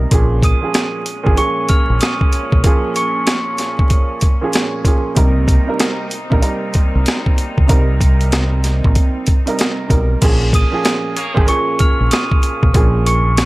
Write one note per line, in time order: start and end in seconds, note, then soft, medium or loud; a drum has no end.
0.00 0.10 A#4 medium
0.11 0.52 A#1 loud
0.11 5.13 A#2 medium
0.11 0.58 A#2 medium
0.11 0.58 F3 medium
0.11 2.61 G#3 medium
0.11 5.12 C#4 medium
0.11 0.59 C#4 medium
0.11 0.59 G#4 loud
0.11 kick loud
0.11 closed hi-hat medium
0.42 0.92 D#6 medium
0.42 0.92 D#7 medium
0.42 kick loud
0.42 closed hi-hat medium
0.61 1.03 A#2 medium
0.61 1.03 F3 medium
0.61 1.03 C#4 medium
0.61 1.04 G#4 loud
0.74 snare loud
0.74 closed hi-hat medium
1.06 closed hi-hat medium
1.23 1.36 G#1 medium
1.23 1.34 A#2 loud
1.23 1.35 F3 medium
1.23 1.36 C#4 medium
1.23 1.37 G#4 loud
1.23 kick medium
1.36 2.56 A#2 medium
1.36 2.56 F3 medium
1.36 2.56 C#4 medium
1.36 2.57 G#4 loud
1.36 1.66 C#6 medium
1.36 1.67 C#7 medium
1.36 closed hi-hat medium
1.69 1.98 F6 medium
1.69 1.98 F7 soft
1.69 kick medium
1.69 closed hi-hat medium
1.90 1.99 A#1 medium
2.01 2.30 D#6 medium
2.01 2.30 D#7 medium
2.01 snare loud
2.01 closed hi-hat loud
2.21 kick loud
2.33 closed hi-hat medium
2.52 2.62 B1 medium
2.52 kick loud
2.63 4.24 A#2 loud
2.63 4.24 F3 loud
2.63 10.19 A#3 medium
2.63 4.25 C#4 medium
2.63 4.25 G#4 loud
2.63 kick loud
2.63 closed hi-hat loud
2.96 3.44 C#6 medium
2.96 3.45 C#7 medium
2.96 closed hi-hat medium
3.27 snare loud
3.27 closed hi-hat loud
3.58 snare soft
3.58 closed hi-hat medium
3.79 kick medium
3.90 kick medium
3.90 closed hi-hat medium
4.21 kick medium
4.21 closed hi-hat medium
4.41 4.82 A#2 medium
4.41 4.83 F3 medium
4.41 4.83 C#4 medium
4.41 4.83 G#4 medium
4.53 snare loud
4.53 closed hi-hat loud
4.85 5.15 A#2 medium
4.85 5.15 F3 medium
4.85 5.15 C#4 medium
4.85 5.16 G#4 medium
4.85 kick medium
4.85 closed hi-hat medium
5.15 5.57 C2 loud
5.15 5.63 C3 loud
5.15 5.63 G3 medium
5.15 10.18 C4 medium
5.15 5.64 D#4 medium
5.15 10.18 D#4 medium
5.15 5.64 A#4 loud
5.15 kick loud
5.15 closed hi-hat loud
5.48 kick loud
5.48 closed hi-hat medium
5.67 6.08 C3 medium
5.67 6.08 G3 medium
5.67 6.09 D#4 medium
5.67 6.09 A#4 loud
5.79 snare loud
5.79 closed hi-hat medium
6.11 closed hi-hat medium
6.30 6.41 A#1 medium
6.30 6.39 C3 loud
6.30 6.40 G3 medium
6.30 6.41 D#4 medium
6.30 6.41 A#4 loud
6.30 kick medium
6.40 7.60 C3 loud
6.40 7.61 G3 medium
6.40 7.61 D#4 medium
6.40 7.62 A#4 loud
6.40 closed hi-hat medium
6.74 kick medium
6.74 closed hi-hat medium
6.95 7.04 C2 medium
7.06 snare loud
7.06 closed hi-hat loud
7.26 kick medium
7.38 closed hi-hat medium
7.58 7.67 C#2 medium
7.58 kick medium
7.67 8.80 C2 loud
7.67 9.29 C3 loud
7.67 9.29 G3 medium
7.67 9.29 D#4 medium
7.67 9.30 A#4 loud
7.67 kick loud
7.67 closed hi-hat loud
8.00 kick loud
8.00 closed hi-hat medium
8.21 closed hi-hat soft
8.32 snare loud
8.32 closed hi-hat loud
8.64 snare soft
8.64 closed hi-hat medium
8.84 8.94 A#1 medium
8.84 kick medium
8.95 kick medium
8.95 closed hi-hat medium
9.27 kick medium
9.27 closed hi-hat medium
9.46 9.87 C3 medium
9.46 9.87 G3 medium
9.46 9.88 D#4 medium
9.46 9.88 A#4 loud
9.46 closed hi-hat medium
9.59 snare loud
9.59 closed hi-hat loud
9.88 10.15 B1 medium
9.88 10.19 C3 medium
9.88 10.20 G3 medium
9.88 10.20 D#4 medium
9.88 10.20 A#4 medium
9.88 kick medium
9.88 closed hi-hat medium
10.21 10.62 A#1 loud
10.21 10.68 A#2 medium
10.21 10.69 F3 medium
10.21 10.69 C#4 medium
10.21 10.70 G#4 loud
10.21 kick loud
10.21 closed hi-hat loud
10.21 crash loud
10.53 11.03 D#6 medium
10.53 11.03 D#7 medium
10.53 kick loud
10.53 closed hi-hat medium
10.72 11.13 A#2 medium
10.72 11.13 F3 medium
10.72 11.14 C#4 medium
10.72 11.14 G#4 loud
10.85 snare loud
10.85 closed hi-hat medium
11.16 11.60 A#3 loud
11.16 11.60 G#4 loud
11.16 11.60 C#5 loud
11.16 closed hi-hat medium
11.34 11.46 G#1 medium
11.34 11.45 A#2 loud
11.34 11.46 F3 medium
11.34 11.47 C#4 medium
11.34 11.48 G#4 loud
11.34 kick loud
11.47 12.66 A#2 loud
11.47 12.67 F3 medium
11.47 12.67 C#4 loud
11.47 12.68 G#4 loud
11.47 11.77 C#6 medium
11.47 11.77 C#7 medium
11.47 closed hi-hat medium
11.79 12.08 F6 medium
11.79 12.09 F7 medium
11.79 kick loud
11.79 closed hi-hat medium
12.01 12.09 A#1 medium
12.11 12.40 D#6 medium
12.11 12.41 D#7 medium
12.11 snare loud
12.11 closed hi-hat loud
12.32 kick loud
12.43 closed hi-hat medium
12.63 12.72 B1 medium
12.63 kick loud
12.74 13.45 A#1 loud
12.74 13.45 A#2 loud
12.74 13.45 F3 loud
12.74 13.45 C#4 medium
12.74 13.45 G#4 loud
12.74 kick loud
12.74 closed hi-hat loud
13.06 13.45 C#6 medium
13.06 13.45 C#7 medium
13.06 closed hi-hat medium
13.37 snare loud
13.37 closed hi-hat medium